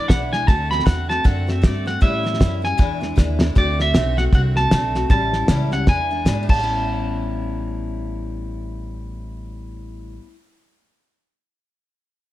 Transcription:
0.08 B1 E3 G#3 D4 E4 F#5, kick, snare, hi-hat pedal
0.32 E3 G#3 D4 E4 G#5, snare
0.47 D2 D3 A3 C4 F#4 A5, kick, snare
0.71 A3 C4 F#4 B5, snare
0.80 snare
0.85 E2 D3 A3 C4 F#4 F#5, kick, snare, hi-hat pedal
1.09 A3 C4 F#4 A5, snare
1.24 F#2 D3 A3 C4 F#4 F#5, kick, snare
1.47 A3 C4 F#4 E5, snare
1.62 G2 D3 A3 C4 F#4 D5, kick, snare, hi-hat pedal
1.86 A3 C4 F#4 F#5, snare
2.01 A2 E3 G3 C#4 E4 E5, kick, snare
2.23 G3 C#4 E4, snare
2.34 snare
2.39 F#2 E3 G3 C#4 E4, kick, snare, hi-hat pedal
2.62 G3 C#4 E4 G#5, snare
2.78 E2 B2 E3 G#3 D4 E4, kick, snare
3.01 E3 G#3 D4 E4, snare
3.16 D#2 E3 G#3 D4 E4, kick, snare, hi-hat pedal
3.40 E3 G#3 D4 E4, snare
3.55 D2 D3 A3 C4 F#4 D5, kick, snare
3.79 A3 C4 F#4 E5, snare
3.94 B1 D3 A3 C4 F#4, snare, hi-hat pedal
4.17 A3 C4 F#4 F#5, snare
4.33 C2 D3 A3 C4 F#4 F#5, kick, snare
4.56 A3 C4 F#4 A5, snare
4.71 B1 D3 A3 C4 F#4, snare, hi-hat pedal
4.95 A3 C4 F#4, snare
5.10 A1 A2 E3 G3 C#4 E4 A5, kick, snare
5.33 G3 C#4 E4, snare
5.48 C#2 A2 E3 G3 C#4 E4, snare, hi-hat pedal
5.71 G3 C#4 E4 F#5, snare
5.87 E2 E3 G#3 D4 E4 G#5, kick, snare
6.11 E3 G#3 D4 E4
6.25 E2 G#2 B2 E3 G#3 D4 E4, snare, hi-hat pedal
6.43 A2
6.49 A1 G3 A5, kick, crash
6.54 B3
6.59 C#4
6.64 E4

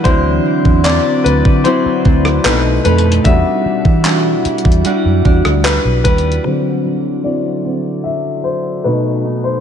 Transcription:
Already playing: G3 D4 E4 F#4 F#5
0.04 D2 D3 F#3 C4 E4 C5 D5, kick, closed hi-hat
0.65 E2, kick
0.84 F#3 C4 E4 D5, clap, closed hi-hat
1.24 D2 B4, closed hi-hat
1.45 D3, kick
1.64 F#3 C4 E4 C5, closed hi-hat
1.86 muted fingered electric bass stroke
2.05 D2 C4, kick
2.25 cross-stick
2.44 B1 B2 A3 C4 D#4 B4, clap
2.84 F2 A3 B4, closed hi-hat
2.98 closed hi-hat
3.12 closed hi-hat
3.24 E2 G3 D4 E4 F#4 D5 E5, kick, closed hi-hat
3.65 muted fingered electric bass stroke
3.85 E3, kick
4.05 G3 D4 F#4, clap, closed hi-hat
4.45 muted fingered electric bass stroke, closed hi-hat
4.58 closed hi-hat
4.65 E2, kick
4.72 closed hi-hat
4.85 G3 D4 F#4, closed hi-hat
5.05 F#2
5.25 E2 D4, kick
5.45 D2, cross-stick
5.64 B4, clap
5.85 B1
6.04 D#2 G3 B4, kick, closed hi-hat
6.18 closed hi-hat
6.32 closed hi-hat
6.44 D3 F#3 C4 C5
6.85 F#3
7.24 F#3 C4 E4 D5
7.65 C4
8.04 F#3 E5
8.44 C5
8.84 B2 A3 D#4 B4
9.25 D#4
9.44 C5

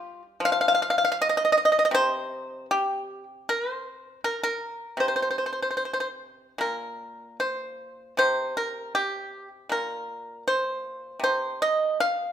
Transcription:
Already playing: G3 F4
0.40 F3
0.45 F5
0.52 F5
0.61 F5
0.68 F5
0.75 F5
0.82 F5
0.90 F5
0.98 F5
1.05 F5
1.12 F5
1.22 D#5
1.29 D#5
1.37 D#5
1.45 D#5
1.52 D#5
1.58 D#5
1.65 D#5
1.72 D#5
1.79 D#5
1.85 D#5
1.91 C3 C5
2.71 G4
3.49 A#4
3.70 C5
4.24 A#4
4.43 A#4
4.97 C3 C5
5.08 C5
5.16 C5
5.22 C5
5.31 C5
5.38 C5
5.46 C5
5.53 C5
5.62 C5
5.71 C5
5.77 C5
5.85 C5
5.93 C5
6.00 C5
6.58 A#2 A#4
7.40 C5
8.17 C3 C5
8.57 A#4
8.95 G4
9.69 A#2 A#4
10.48 C5
11.20 C3
11.24 C5
11.62 D#5
12.00 F5

